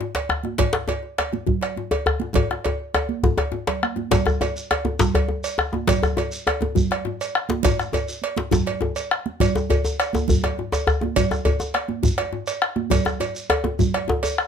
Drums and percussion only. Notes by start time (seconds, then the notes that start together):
0.01 djembe tone
0.15 cowbell, djembe slap
0.29 bombo rim, djembe tone
0.43 bombo rim, high conga, djembe tone
0.58 bombo rim, bombo low, cowbell, djembe slap, high conga, low conga, djembe bass
0.73 bombo rim, djembe slap
0.88 cowbell, djembe slap, djembe tone, high conga
1.03 djembe slap
1.18 bombo rim, cowbell, djembe slap, high conga
1.33 djembe slap, djembe tone, high conga
1.47 bombo low, high conga, djembe bass, low conga
1.61 bombo rim, cowbell, djembe slap
1.76 high conga, djembe tone
1.91 cowbell, djembe tone
2.06 bombo rim, djembe bass
2.20 bombo rim, high conga, djembe tone
2.34 bombo low, cowbell, djembe tone, low conga, djembe bass
2.51 bombo rim, djembe slap
2.65 cowbell, djembe tone
2.94 bombo rim, cowbell, high conga, djembe tone
3.09 high conga
3.23 bombo low, djembe tone, djembe bass, low conga
3.37 bombo rim, cowbell, djembe slap, djembe tone
3.52 djembe tone, high conga
3.67 bombo rim, cowbell, djembe slap, low conga
3.83 bombo rim, high conga
3.96 djembe tone, high conga
4.11 bombo rim, bombo low, cowbell, djembe slap, high conga, djembe bass, low conga, shekere
4.26 bombo rim, djembe slap, djembe bass, shekere
4.41 cowbell, djembe slap, djembe tone, high conga, shekere
4.56 djembe slap, shekere
4.71 bombo rim, cowbell, djembe tone, high conga
4.85 djembe slap, djembe tone, high conga
4.99 bombo low, djembe slap, high conga, djembe bass, low conga, shekere
5.15 bombo rim, cowbell, djembe slap, djembe bass
5.28 djembe tone, high conga
5.44 cowbell, shekere
5.58 bombo rim, djembe tone
5.73 bombo rim, djembe tone, high conga
5.87 bombo rim, bombo low, cowbell, djembe slap, high conga, low conga, djembe bass, shekere
6.03 bombo rim, djembe slap, djembe bass, shekere
6.17 cowbell, djembe slap, djembe tone, high conga, shekere
6.32 djembe slap, shekere
6.47 bombo rim, cowbell, djembe tone, high conga
6.61 djembe slap, djembe tone, high conga
6.75 bombo low, high conga, djembe bass, low conga, shekere
6.91 bombo rim, cowbell, djembe slap
7.05 djembe tone, high conga
7.21 cowbell, shekere
7.35 bombo rim
7.49 bombo rim, djembe slap, high conga, djembe tone
7.63 bombo rim, bombo low, cowbell, djembe slap, high conga, low conga, djembe bass, shekere
7.79 bombo rim, djembe slap, shekere
7.92 cowbell, djembe slap, high conga, djembe tone, shekere
8.08 djembe slap, shekere
8.22 cowbell, high conga
8.37 djembe slap, high conga, djembe tone
8.51 bombo low, djembe slap, high conga, djembe bass, low conga, shekere
8.66 cowbell, djembe slap
8.81 djembe tone, high conga
8.96 cowbell, shekere
9.11 bombo rim
9.26 bombo rim, high conga
9.40 bombo rim, bombo low, cowbell, high conga, djembe bass, low conga, shekere
9.55 djembe slap, djembe tone, shekere
9.69 bombo rim, cowbell, high conga, djembe tone, djembe bass, shekere
9.85 djembe tone, shekere
10.00 bombo rim, cowbell, shekere
10.13 high conga, djembe tone, shekere
10.28 bombo rim, bombo low, low conga, djembe bass, shekere
10.44 bombo rim, cowbell, djembe slap, djembe tone
10.58 djembe slap, high conga, djembe tone
10.72 bombo rim, cowbell, djembe slap, djembe tone, shekere
10.87 bombo rim, djembe bass, shekere
11.01 bombo rim, djembe tone, high conga
11.03 djembe tone
11.16 bombo rim, bombo low, cowbell, high conga, low conga, djembe bass, shekere
11.31 bombo rim, djembe slap, djembe tone, shekere
11.45 cowbell, djembe slap, high conga, djembe tone, djembe bass, shekere
11.60 djembe slap, djembe tone, shekere
11.74 bombo rim, cowbell, high conga
11.88 djembe slap, high conga, djembe tone
12.03 bombo low, high conga, djembe bass, low conga, shekere
12.18 bombo rim, cowbell, djembe slap
12.33 djembe tone, high conga
12.47 cowbell, shekere
12.62 bombo rim
12.76 bombo rim, djembe tone, high conga
12.90 bombo rim, bombo low, cowbell, high conga, djembe tone, djembe bass, low conga, shekere
13.05 bombo rim, djembe slap, djembe tone, shekere
13.20 cowbell, djembe slap, djembe tone, high conga, shekere
13.35 djembe slap, shekere
13.49 bombo rim, cowbell, high conga, djembe tone
13.64 djembe slap, djembe tone, high conga
13.79 bombo low, high conga, djembe bass, low conga, shekere
13.94 bombo rim, cowbell, djembe slap
14.08 djembe tone, high conga
14.09 djembe tone
14.23 cowbell, djembe tone, shekere
14.38 bombo rim